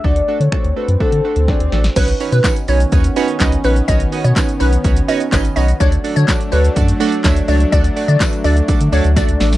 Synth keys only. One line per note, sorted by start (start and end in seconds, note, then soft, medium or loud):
0.04 0.15 A3 medium
0.04 0.15 D4 medium
0.04 0.15 F#4 medium
0.04 0.15 A4 loud
0.28 0.39 A3 medium
0.28 0.39 D4 medium
0.28 0.39 F#4 medium
0.28 0.39 A4 medium
0.52 0.63 A3 medium
0.52 0.63 D4 medium
0.52 0.63 F#4 medium
0.52 0.63 A4 medium
0.76 0.87 A3 medium
0.76 0.87 D4 medium
0.76 0.87 F#4 medium
0.76 0.87 A4 medium
1.00 1.11 A3 medium
1.00 1.11 D4 medium
1.00 1.11 F#4 medium
1.00 1.11 A4 medium
1.24 1.35 A3 medium
1.24 1.35 D4 medium
1.24 1.35 F#4 medium
1.24 1.35 A4 medium
1.48 1.59 A3 medium
1.48 1.59 D4 medium
1.48 1.59 F#4 medium
1.48 1.59 G#4 medium
1.72 1.83 A3 medium
1.72 1.83 D4 medium
1.72 1.83 F#4 medium
1.72 1.83 A4 medium
1.96 2.07 C#4 loud
1.96 2.07 D#4 medium
1.96 2.07 F#4 medium
1.96 2.07 B4 medium
1.96 2.07 C#5 loud
2.20 2.31 C#4 medium
2.20 2.31 D#4 medium
2.20 2.31 F#4 medium
2.20 2.31 B4 medium
2.20 2.31 C#5 medium
2.44 2.55 C#4 medium
2.44 2.55 D#4 medium
2.44 2.55 F#4 medium
2.44 2.55 B4 medium
2.44 2.55 C#5 medium
2.68 2.79 C#4 medium
2.68 2.79 D#4 medium
2.68 2.79 F#4 medium
2.68 2.79 B4 medium
2.68 2.79 C#5 medium
2.92 3.03 C#4 medium
2.92 3.03 D#4 medium
2.92 3.03 F#4 medium
2.92 3.03 B4 medium
2.92 3.03 C#5 loud
3.16 3.27 C#4 loud
3.16 3.27 D#4 loud
3.16 3.27 F#4 loud
3.16 3.27 B4 loud
3.16 3.28 C#5 loud
3.40 3.51 C#4 medium
3.40 3.51 D#4 medium
3.40 3.51 F#4 medium
3.40 3.51 B4 medium
3.40 3.51 D#5 loud
3.64 3.75 C#4 medium
3.64 3.75 D#4 medium
3.64 3.75 F#4 medium
3.64 3.75 B4 medium
3.64 3.75 C#5 medium
3.88 3.99 C#4 loud
3.88 3.99 D#4 medium
3.88 3.99 F#4 medium
3.88 3.99 B4 medium
3.88 4.00 C#5 loud
4.12 4.23 C#4 medium
4.12 4.23 D#4 medium
4.12 4.23 F#4 medium
4.12 4.23 B4 medium
4.12 4.23 D#5 medium
4.36 4.47 C#4 medium
4.36 4.47 D#4 medium
4.36 4.47 F#4 medium
4.36 4.47 B4 medium
4.36 4.47 C#5 medium
4.60 4.71 C#4 medium
4.60 4.71 D#4 medium
4.60 4.71 F#4 medium
4.60 4.71 B4 medium
4.60 4.71 C#5 medium
4.84 4.95 C#4 medium
4.84 4.95 D#4 medium
4.84 4.95 F#4 medium
4.84 4.95 B4 medium
4.84 4.95 C#5 loud
5.08 5.19 C#4 loud
5.08 5.19 D#4 medium
5.08 5.19 F#4 loud
5.08 5.19 B4 loud
5.08 5.19 C#5 loud
5.32 5.43 C#4 loud
5.32 5.43 D#4 medium
5.32 5.43 F#4 medium
5.32 5.43 B4 medium
5.32 5.43 D#5 loud
5.56 5.67 C#4 medium
5.56 5.67 D#4 medium
5.56 5.67 F#4 medium
5.56 5.67 B4 medium
5.56 5.67 C#5 medium
5.80 5.91 A3 medium
5.80 5.91 D4 medium
5.80 5.91 F#4 medium
5.80 5.91 A4 medium
5.80 5.91 D5 loud
6.04 6.15 A3 medium
6.04 6.15 D4 medium
6.04 6.15 F#4 medium
6.04 6.15 A4 medium
6.04 6.15 D5 medium
6.28 6.39 A3 medium
6.28 6.39 D4 medium
6.28 6.39 F#4 medium
6.28 6.39 A4 medium
6.28 6.39 D5 medium
6.52 6.63 A3 medium
6.52 6.63 D4 medium
6.52 6.63 F#4 medium
6.52 6.63 A4 medium
6.52 6.63 C#5 medium
6.76 6.87 A3 medium
6.76 6.87 D4 medium
6.76 6.87 F#4 medium
6.76 6.87 A4 medium
6.76 6.87 D5 loud
7.00 7.11 A3 loud
7.00 7.11 D4 loud
7.00 7.11 F#4 loud
7.00 7.11 A4 loud
7.00 7.11 D5 loud
7.24 7.35 A3 loud
7.24 7.35 D4 medium
7.24 7.35 F#4 medium
7.24 7.35 A4 medium
7.24 7.35 E5 loud
7.48 7.59 A3 medium
7.48 7.59 D4 medium
7.48 7.59 F#4 medium
7.48 7.59 A4 medium
7.48 7.59 C#5 medium
7.72 7.83 A3 loud
7.72 7.83 D4 medium
7.72 7.83 F#4 medium
7.72 7.83 A4 medium
7.72 7.84 D5 loud
7.96 8.07 A3 medium
7.96 8.07 D4 medium
7.96 8.07 F#4 medium
7.96 8.07 A4 medium
7.96 8.07 D5 medium
8.20 8.31 A3 medium
8.20 8.31 D4 medium
8.20 8.31 F#4 medium
8.20 8.31 A4 medium
8.20 8.31 B4 medium
8.44 8.55 A3 medium
8.44 8.55 D4 medium
8.44 8.55 F#4 medium
8.44 8.55 A4 medium
8.44 8.55 D5 medium
8.68 8.79 A3 medium
8.68 8.79 D4 medium
8.68 8.79 F#4 medium
8.68 8.79 A4 medium
8.68 8.79 D5 loud
8.92 9.03 A3 loud
8.92 9.03 D4 loud
8.92 9.03 F#4 medium
8.92 9.03 A4 medium
8.92 9.03 D5 loud
9.16 9.27 A3 loud
9.16 9.27 D4 medium
9.16 9.27 F#4 medium
9.16 9.27 A4 medium
9.16 9.27 D5 loud
9.40 9.51 A3 medium
9.40 9.51 D4 medium
9.40 9.51 F#4 medium
9.40 9.51 A4 medium
9.40 9.51 D5 medium